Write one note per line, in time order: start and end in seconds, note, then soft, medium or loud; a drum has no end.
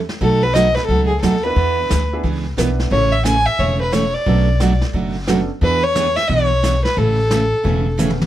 0.09 snare soft
0.21 0.75 B1 medium
0.21 0.42 B2 medium
0.21 0.42 F#3 medium
0.21 0.43 A3 medium
0.21 0.43 D#4 medium
0.21 0.43 F#4 medium
0.21 0.44 A4 loud
0.21 brush sweep soft
0.21 kick soft
0.43 0.87 B3 medium
0.43 0.87 D#4 medium
0.43 0.87 F#4 medium
0.43 0.87 A4 medium
0.43 0.55 B4 medium
0.54 0.66 B2 medium
0.54 0.66 F#3 medium
0.54 0.66 A3 medium
0.54 0.66 D#4 medium
0.54 0.67 F#4 medium
0.54 0.76 D#5 loud
0.54 snare medium
0.54 hi-hat pedal medium
0.75 0.85 B4 medium
0.75 snare soft
0.86 1.17 C#2 medium
0.86 1.10 B2 medium
0.86 1.06 A4 medium
0.86 brush sweep medium
0.86 kick soft
0.90 1.11 F#3 medium
0.90 1.11 A3 medium
0.90 1.11 D#4 medium
0.90 1.11 F#4 medium
1.06 1.19 G#4 medium
1.21 1.51 D#2 medium
1.21 1.34 B2 medium
1.21 1.34 F#3 medium
1.21 1.34 A3 medium
1.21 1.34 D#4 medium
1.21 1.34 F#4 medium
1.21 1.44 A4 medium
1.21 snare medium
1.21 hi-hat pedal medium
1.42 1.88 B3 medium
1.42 1.88 D4 medium
1.42 1.88 E4 medium
1.42 2.11 B4 medium
1.42 1.88 B4 medium
1.56 1.83 E2 medium
1.56 1.77 E3 medium
1.56 1.78 B3 medium
1.56 1.78 D4 medium
1.56 1.78 G#4 medium
1.56 brush sweep soft
1.56 kick soft
1.89 2.19 D2 medium
1.89 2.01 E3 medium
1.89 2.01 B3 medium
1.89 2.02 D4 medium
1.89 2.02 G#4 medium
1.89 snare medium
1.89 hi-hat pedal medium
2.13 2.23 B3 medium
2.13 2.23 D4 medium
2.13 2.23 E4 medium
2.13 2.23 G#4 medium
2.23 2.52 C#2 medium
2.23 2.45 E3 medium
2.23 2.45 B3 medium
2.23 2.46 D4 medium
2.23 2.46 G#4 medium
2.23 brush sweep medium
2.23 kick soft
2.57 2.86 B1 medium
2.57 2.69 E3 medium
2.57 2.69 B3 medium
2.57 2.92 B3 medium
2.57 2.69 D4 medium
2.57 2.92 D4 medium
2.57 2.91 E4 medium
2.57 2.69 G#4 medium
2.57 2.92 B4 medium
2.57 snare medium
2.57 hi-hat pedal medium
2.80 snare soft
2.90 3.45 A1 medium
2.90 3.12 C#3 medium
2.90 3.13 E3 medium
2.90 3.13 A3 medium
2.90 3.11 A3 medium
2.90 3.13 C#4 medium
2.90 3.11 C#4 medium
2.90 3.11 E4 medium
2.90 3.13 G#4 medium
2.90 3.11 G#4 medium
2.90 3.14 C#5 loud
2.90 brush sweep soft
2.90 kick soft
3.12 3.25 E5 medium
3.24 3.36 C#3 medium
3.24 3.36 E3 medium
3.24 3.36 A3 medium
3.24 3.37 C#4 medium
3.24 3.37 G#4 medium
3.24 3.48 G#5 loud
3.24 snare medium
3.24 hi-hat pedal medium
3.46 3.61 E5 medium
3.59 4.13 E1 medium
3.59 3.80 C#3 medium
3.59 3.81 E3 medium
3.59 3.81 A3 medium
3.59 3.81 C#4 medium
3.59 3.81 G#4 medium
3.59 3.81 C#5 medium
3.59 brush sweep soft
3.59 kick soft
3.81 3.94 B4 medium
3.92 4.04 C#3 medium
3.92 4.04 E3 medium
3.92 4.04 A3 medium
3.92 4.04 C#4 medium
3.92 4.04 G#4 medium
3.92 4.15 C#5 medium
3.92 snare medium
3.92 hi-hat pedal soft
4.14 4.81 D5 medium
4.26 4.80 B1 medium
4.26 4.48 B2 medium
4.26 4.48 F#3 medium
4.26 4.48 A3 medium
4.26 4.46 B3 medium
4.26 4.47 C#4 medium
4.26 4.48 D4 medium
4.26 4.47 D4 medium
4.26 4.48 F#4 medium
4.26 4.47 A4 medium
4.26 brush sweep medium
4.26 kick soft
4.60 4.72 B2 medium
4.60 4.72 F#3 medium
4.60 4.72 A3 medium
4.60 4.72 D4 medium
4.60 4.72 F#4 medium
4.60 snare medium
4.60 hi-hat pedal medium
4.81 snare soft
4.93 5.48 F#1 medium
4.93 5.15 B2 medium
4.93 5.15 F#3 medium
4.93 5.16 A3 medium
4.93 5.16 D4 medium
4.93 5.16 F#4 medium
4.93 brush sweep medium
4.93 kick soft
5.27 5.39 B2 medium
5.27 5.39 F#3 medium
5.27 5.39 A3 medium
5.27 5.48 B3 medium
5.27 5.47 C#4 medium
5.27 5.39 D4 medium
5.27 5.48 D4 medium
5.27 5.40 F#4 medium
5.27 5.48 A4 medium
5.27 snare medium
5.27 hi-hat pedal medium
5.61 6.15 E2 medium
5.61 5.83 E3 medium
5.61 5.83 B3 medium
5.61 5.81 B3 medium
5.61 5.83 D4 medium
5.61 5.81 D4 medium
5.61 5.81 E4 medium
5.61 5.83 G#4 medium
5.61 5.82 G#4 medium
5.61 5.85 B4 loud
5.61 brush sweep soft
5.61 kick soft
5.84 6.18 C#5 loud
5.95 6.06 E3 medium
5.95 6.07 B3 medium
5.95 6.07 D4 medium
5.95 6.07 G#4 medium
5.95 snare medium
5.95 hi-hat pedal medium
6.16 6.29 E5 loud
6.16 snare soft
6.28 6.83 B1 medium
6.28 6.50 E3 medium
6.28 6.51 B3 medium
6.28 6.51 D4 medium
6.28 6.51 G#4 medium
6.28 6.83 C#5 loud
6.28 brush sweep soft
6.28 kick soft
6.62 6.74 E3 medium
6.62 6.74 B3 medium
6.62 6.74 D4 medium
6.62 6.75 G#4 medium
6.62 snare medium
6.62 hi-hat pedal medium
6.85 6.98 B4 medium
6.85 snare soft
6.97 7.51 A1 medium
6.97 7.18 C#3 medium
6.97 7.18 E3 medium
6.97 7.18 A3 medium
6.97 7.19 C#4 medium
6.97 7.19 G#4 medium
6.97 7.98 A4 medium
6.97 brush sweep soft
6.97 kick soft
7.31 7.42 C#3 medium
7.31 7.42 E3 medium
7.31 7.42 A3 medium
7.31 7.42 C#4 medium
7.31 7.43 G#4 medium
7.31 snare medium
7.31 hi-hat pedal medium
7.63 8.19 E1 medium
7.63 7.85 C#3 medium
7.63 7.86 E3 medium
7.63 7.83 A3 medium
7.63 7.86 A3 medium
7.63 7.83 B3 soft
7.63 7.86 C#4 medium
7.63 7.84 C#4 medium
7.63 7.86 G#4 medium
7.63 7.84 G#4 medium
7.63 brush sweep soft
7.63 kick soft
7.98 8.09 C#3 medium
7.98 8.09 E3 medium
7.98 8.09 A3 medium
7.98 8.17 A3 medium
7.98 8.18 B3 medium
7.98 8.10 C#4 medium
7.98 8.18 C#4 medium
7.98 8.10 G#4 medium
7.98 8.18 G#4 medium
7.98 hi-hat pedal medium
7.98 mid tom soft
8.10 mid tom medium
8.22 mid tom medium